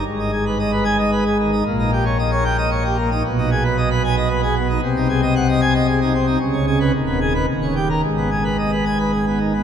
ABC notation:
X:1
M:3/4
L:1/16
Q:1/4=113
K:G#m
V:1 name="Pipe organ"
G,, D G B d B g d B G D, D | A,, D =G c d c =g d c G A, D | B,, D G B d B g d B G B, D | ^B,, D G d f d g d G D ^B, D |
C, C G B D,, B, G B D,, C =G A | G,, B, G B d B g B G B, D, B, |]
V:2 name="Pipe organ" clef=bass
G,,,12 | A,,,12 | B,,,12 | ^B,,,12 |
C,,4 D,,,4 D,,,4 | G,,,12 |]